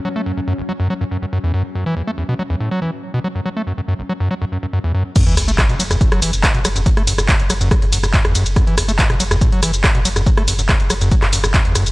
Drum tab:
CC |----------------|----------------|----------------|x---------------|
RD |----------------|----------------|----------------|--x---x---x---x-|
HH |----------------|----------------|----------------|xxoxxxoxxxoxxxox|
SH |----------------|----------------|----------------|x-xxx-xxx-xxx-xx|
CP |----------------|----------------|----------------|----x-------x---|
SD |----------------|----------------|----------------|--r-r--r-r--r-r-|
BD |----------------|----------------|----------------|o---o---o---o---|

CC |----------------|----------------|----------------|
RD |--x---x---x---x-|--x---x---x---x-|--x---x---x---x-|
HH |xxoxxxoxxxoxxxox|xxoxxxoxxxoxxxox|xxoxxxoxxxoxxxox|
SH |x-xxx-xxx-xxx-xx|x-xxx-xxx-xxx-xx|x-xxx-xxx-xxx-xx|
CP |----x-------x---|----x-------x---|----x----x--x---|
SD |-r-r--r-r--r-r--|r-r--r-r--r-r--r|-r--r-r--r-r--r-|
BD |o---o---o---o---|o---o---o---o---|o---o---o---o---|